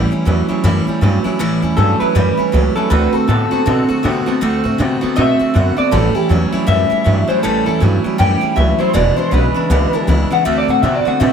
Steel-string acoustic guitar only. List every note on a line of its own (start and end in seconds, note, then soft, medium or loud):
0.00 0.11 A2 loud
0.00 0.12 E3 medium
0.00 0.11 G3 loud
0.00 0.11 C#4 medium
0.11 0.25 G3 soft
0.11 0.26 C#4 medium
0.11 0.26 E4 medium
0.25 0.49 E3 medium
0.25 0.49 G3 medium
0.25 0.48 C#4 medium
0.25 0.47 E4 medium
0.48 0.63 G3 soft
0.48 0.64 C#4 medium
0.48 0.64 E4 medium
0.64 0.87 A2 medium
0.64 0.87 E3 medium
0.64 0.87 G3 medium
0.64 0.87 C#4 medium
0.64 0.86 E4 loud
0.87 1.01 G3 medium
0.87 1.02 C#4 medium
0.87 1.02 E4 medium
1.01 1.25 E3 medium
1.01 1.25 G3 medium
1.01 1.24 C#4 medium
1.01 1.23 E4 medium
1.24 1.39 G3 medium
1.24 1.40 C#4 medium
1.24 1.39 E4 medium
1.39 1.63 A2 medium
1.39 1.63 E3 medium
1.39 1.63 G3 loud
1.39 1.62 C#4 loud
1.39 1.61 E4 loud
1.62 1.76 G3 soft
1.62 1.77 C#4 medium
1.62 1.77 E4 medium
1.77 2.00 E3 medium
1.77 2.01 G3 medium
1.77 2.00 C#4 medium
1.77 1.99 E4 medium
2.00 2.15 G3 soft
2.00 2.15 C#4 soft
2.00 2.15 E4 medium
2.15 2.38 A2 medium
2.15 2.38 E3 medium
2.15 2.38 G3 medium
2.15 2.37 C#4 medium
2.15 2.36 E4 medium
2.37 2.52 G3 soft
2.37 2.53 C#4 medium
2.37 2.53 E4 medium
2.52 2.76 E3 medium
2.52 2.76 G3 medium
2.52 2.75 C#4 medium
2.52 2.74 E4 medium
2.75 2.90 G3 medium
2.75 2.91 C#4 medium
2.75 2.90 E4 medium
2.90 3.14 D3 medium
2.90 3.14 A3 medium
2.90 3.13 C4 medium
2.90 3.11 F#4 medium
3.13 3.27 A3 soft
3.13 3.28 C4 soft
3.13 3.28 F#4 medium
3.27 3.51 D3 medium
3.27 3.52 A3 medium
3.27 3.51 C4 medium
3.27 3.50 F#4 medium
3.51 3.65 A3 soft
3.51 3.66 C4 soft
3.51 3.66 F#4 medium
3.66 3.89 D3 medium
3.66 3.89 A3 medium
3.66 3.89 C4 medium
3.66 3.87 F#4 medium
3.89 4.03 A3 soft
3.89 4.03 C4 medium
3.89 4.04 F#4 medium
4.03 4.27 D3 medium
4.03 4.27 A3 medium
4.03 4.26 C4 medium
4.03 4.25 F#4 medium
4.26 4.40 A3 medium
4.26 4.41 C4 medium
4.26 4.41 F#4 medium
4.41 4.65 D3 medium
4.41 4.65 A3 medium
4.41 4.64 C4 loud
4.41 4.63 F#4 loud
4.64 4.78 A3 medium
4.64 4.79 C4 medium
4.64 4.79 F#4 medium
4.78 5.02 D3 medium
4.78 5.02 A3 medium
4.78 5.01 C4 medium
4.78 5.00 F#4 medium
5.01 5.15 A3 medium
5.01 5.16 C4 medium
5.01 5.16 F#4 medium
5.16 5.40 D3 medium
5.16 5.40 A3 medium
5.16 5.39 C4 medium
5.16 5.38 F#4 medium
5.39 5.53 A3 medium
5.39 5.54 C4 medium
5.39 5.54 F#4 medium
5.54 5.77 D3 medium
5.54 5.77 A3 medium
5.54 5.77 C4 medium
5.54 5.75 F#4 medium
5.76 5.92 A3 soft
5.76 5.92 C4 medium
5.76 5.92 F#4 medium
5.91 6.15 A2 medium
5.91 6.16 E3 medium
5.91 6.16 G3 medium
5.91 6.15 C#4 medium
5.91 6.13 E4 medium
6.15 6.29 G3 soft
6.15 6.29 C#4 medium
6.15 6.30 E4 medium
6.29 6.53 E3 medium
6.29 6.53 G3 medium
6.29 6.52 C#4 medium
6.29 6.51 E4 medium
6.52 6.66 G3 medium
6.52 6.67 C#4 medium
6.52 6.67 E4 medium
6.67 6.91 A2 medium
6.67 6.91 E3 medium
6.67 6.91 G3 medium
6.67 6.90 C#4 medium
6.67 6.89 E4 medium
6.90 7.04 G3 soft
6.90 7.05 C#4 medium
6.90 7.05 E4 medium
7.04 7.28 E3 medium
7.04 7.29 G3 medium
7.04 7.28 C#4 medium
7.04 7.26 E4 medium
7.28 7.43 G3 soft
7.28 7.43 C#4 medium
7.28 7.43 E4 medium
7.43 7.66 A2 medium
7.43 7.67 E3 medium
7.43 7.67 G3 medium
7.43 7.66 C#4 medium
7.43 7.65 E4 loud
7.66 7.80 G3 soft
7.66 7.81 C#4 soft
7.66 7.81 E4 medium
7.80 8.04 E3 medium
7.80 8.05 G3 medium
7.80 8.04 C#4 medium
7.80 8.03 E4 medium
8.04 8.18 G3 soft
8.04 8.18 C#4 medium
8.04 8.18 E4 medium
8.18 8.42 A2 medium
8.18 8.42 E3 medium
8.18 8.42 G3 medium
8.18 8.41 C#4 medium
8.18 8.40 E4 medium
8.41 8.55 G3 soft
8.41 8.56 C#4 medium
8.41 8.56 E4 medium
8.56 8.79 E3 medium
8.56 8.79 G3 medium
8.56 8.79 C#4 medium
8.56 8.77 E4 medium
8.79 8.94 G3 soft
8.79 8.94 C#4 soft
8.79 8.94 E4 medium
8.93 9.17 E2 medium
8.93 9.18 B2 medium
8.93 9.17 E3 medium
8.93 9.17 G#3 medium
8.93 9.16 D4 medium
8.93 9.15 E4 medium
9.16 9.30 E3 soft
9.16 9.31 G#3 medium
9.16 9.32 D4 medium
9.16 9.32 E4 medium
9.31 9.55 E3 medium
9.31 9.55 G#3 medium
9.31 9.54 D4 medium
9.31 9.53 E4 medium
9.54 9.69 E3 soft
9.54 9.70 G#3 soft
9.54 9.70 D4 medium
9.54 9.70 E4 medium
9.70 9.93 E2 medium
9.70 9.93 B2 medium
9.70 9.94 E3 medium
9.70 9.93 G#3 medium
9.70 9.92 D4 medium
9.70 9.92 E4 medium
9.93 10.06 E3 medium
9.93 10.07 G#3 medium
9.93 10.08 D4 medium
9.93 10.08 E4 medium
10.07 10.31 E3 medium
10.07 10.31 G#3 medium
10.07 10.30 D4 medium
10.07 10.29 E4 medium
10.30 10.45 E3 soft
10.30 10.45 G#3 medium
10.30 10.46 D4 medium
10.30 10.45 E4 medium
10.45 10.69 D3 medium
10.45 10.69 A3 medium
10.45 10.68 C4 medium
10.45 10.67 F#4 medium
10.68 10.82 A3 soft
10.68 10.83 C4 medium
10.68 10.83 F#4 medium
10.83 11.06 D3 medium
10.83 11.06 A3 medium
10.83 11.05 C4 medium
10.83 11.04 F#4 medium
11.05 11.19 A3 soft
11.05 11.20 C4 medium
11.05 11.20 F#4 medium
11.20 11.33 D3 medium
11.20 11.33 A3 medium
11.20 11.33 C4 medium
11.20 11.33 F#4 medium